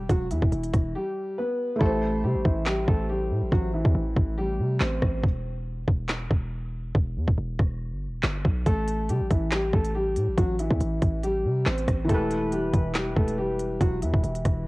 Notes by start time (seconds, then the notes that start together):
0.09 E1 F#3 F#4, kick, closed hi-hat
0.31 E2 E3 E4, closed hi-hat
0.42 E1, kick
0.52 E1, closed hi-hat
0.63 closed hi-hat
0.73 E1, kick, cross-stick, closed hi-hat
0.95 G3 G4
1.38 B3 B4
1.76 A3 E4
1.81 A1 A3 G4 A4, kick
1.85 C5
2.23 C3 G3 G4
2.35 A1
2.45 A1 E3 E4, kick
2.66 G3 G4, snare, clap
2.88 A1 A3 A4, kick
3.09 G3 G4
3.31 A2
3.42 A1
3.52 A1 F#3 F#4, kick
3.74 E3 E4
3.85 E2, kick
3.95 A1
4.16 A1, kick
4.38 G3 G4
4.59 C3
4.80 A1 C4 C5, snare, clap
5.02 A1, kick, cross-stick
5.23 E1, kick
5.88 E1, kick
6.09 snare, clap
6.31 E1, kick
6.95 E1, kick
7.16 E2
7.28 E1, kick
7.38 E1
7.59 E1, kick, cross-stick
7.92 G1
8.08 E1
8.23 G1, snare, clap
8.45 B1, kick
8.66 A1 A3 A4, kick, closed hi-hat
8.88 closed hi-hat
9.09 C3 G3 G4, closed hi-hat
9.21 A1
9.31 A1 E3 E4, kick, closed hi-hat
9.52 G3 G4, snare, clap, closed hi-hat
9.74 A1 A3 A4, kick
9.85 closed hi-hat
9.95 G3 G4
10.16 A2, closed hi-hat
10.28 A1
10.38 A1 F#3 F#4, kick, closed hi-hat
10.59 E3 E4, closed hi-hat
10.71 E2, kick
10.81 A1, closed hi-hat
11.02 A1, kick, closed hi-hat
11.23 G3 G4, closed hi-hat
11.45 C3
11.66 A1 C4 C5, snare, clap
11.78 closed hi-hat
11.88 A1, kick, cross-stick, closed hi-hat
12.04 E3 E4
12.09 E1 A3 G4 A4, kick, closed hi-hat
12.14 B4
12.31 closed hi-hat
12.52 G3 G4, closed hi-hat
12.73 E1 E3 E4, kick, closed hi-hat
12.95 G3 G4, snare, clap, closed hi-hat
13.16 E1 A3 A4, kick
13.28 closed hi-hat
13.38 G3 G4
13.59 closed hi-hat
13.81 E1 F#3 F#4, kick, closed hi-hat
14.02 E2 E3 E4, closed hi-hat
14.14 E1, kick
14.24 E1, closed hi-hat
14.35 closed hi-hat
14.45 E1, kick, cross-stick, closed hi-hat